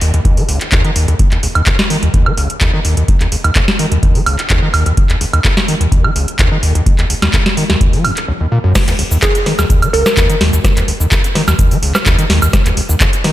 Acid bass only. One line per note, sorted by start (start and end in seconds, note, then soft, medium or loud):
0.02 0.12 D#2 loud
0.14 0.20 D#2 loud
0.25 0.39 D#2 medium
0.37 0.44 F#3 medium
0.49 0.59 C#2 medium
0.72 0.82 D#2 loud
0.85 0.91 D#3 medium
0.96 1.06 D#2 loud
1.08 1.14 D#2 loud
1.32 1.38 D#2 medium
1.43 1.47 C#2 medium
1.55 1.62 D#2 loud
1.67 1.71 D#2 medium
1.90 1.97 D#3 medium
2.03 2.09 D#2 loud
2.14 2.28 D#2 medium
2.26 2.32 F#3 medium
2.38 2.48 C#2 medium
2.61 2.71 D#2 loud
2.74 2.80 D#3 medium
2.85 2.95 D#2 loud
2.97 3.03 D#2 loud
3.21 3.27 D#2 medium
3.32 3.36 C#2 medium
3.44 3.51 D#2 loud
3.56 3.60 D#2 medium
3.79 3.86 D#3 medium
3.92 3.98 D#2 loud
4.03 4.17 D#2 medium
4.15 4.21 F#3 medium
4.26 4.37 C#2 medium
4.50 4.60 D#2 loud
4.63 4.69 D#3 medium
4.74 4.84 D#2 loud
4.86 4.92 D#2 loud
5.10 5.16 D#2 medium
5.21 5.25 C#2 medium
5.33 5.40 D#2 loud
5.45 5.49 D#2 medium
5.68 5.75 D#3 medium
5.81 5.87 D#2 loud
5.92 6.06 D#2 medium
6.04 6.11 F#3 medium
6.16 6.26 C#2 medium
6.39 6.49 D#2 loud
6.52 6.58 D#3 medium
6.63 6.73 D#2 loud
6.75 6.81 D#2 loud
6.99 7.05 D#2 medium
7.10 7.14 C#2 medium
7.22 7.29 D#2 loud
7.34 7.38 D#2 medium
7.57 7.64 D#3 medium
7.70 7.76 D#2 loud
7.81 7.95 D#2 medium
7.94 8.06 F#3 medium
8.05 8.11 D#2 medium
8.28 8.32 C#2 medium
8.41 8.47 D#2 medium
8.52 8.59 A#2 loud
8.64 8.73 F#2 loud
8.88 8.94 D#2 medium
8.99 9.03 C#2 medium
9.11 9.18 D#2 loud
9.23 9.27 D#2 medium
9.46 9.53 D#3 medium
9.59 9.65 D#2 loud
9.70 9.84 D#2 medium
9.82 9.89 F#3 medium
9.94 10.04 C#2 medium
10.17 10.27 D#2 loud
10.30 10.36 D#3 medium
10.41 10.51 D#2 loud
10.53 10.59 D#2 loud
10.77 10.83 D#2 medium
10.88 10.92 C#2 medium
11.00 11.07 D#2 loud
11.12 11.16 D#2 medium
11.35 11.42 D#3 medium
11.48 11.54 D#2 loud
11.59 11.73 D#2 medium
11.71 11.77 F#3 medium
11.83 11.93 C#2 medium
12.06 12.16 D#2 loud
12.19 12.25 D#3 medium
12.30 12.40 D#2 loud
12.42 12.48 D#2 loud
12.66 12.72 D#2 medium
12.77 12.81 C#2 medium
12.89 12.96 D#2 loud
13.01 13.05 D#2 medium
13.24 13.31 D#3 medium